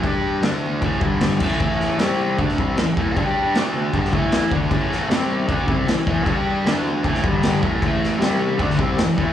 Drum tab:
CC |x---x---x---x-x-|x---x---x---x---|x---x---x---x---|x---x---x---x---|
SD |----o-------o---|--o-o----o--o---|----o----o--o---|--o-o-------o---|
BD |o-------o-o---o-|o-------o-o---o-|o-------o-o---o-|o-------o-o---o-|

CC |x---x---x---x---|x---x---x---x---|
SD |----o----o--o---|--o-o----o--o---|
BD |o-------o-o---o-|o-------o-o---o-|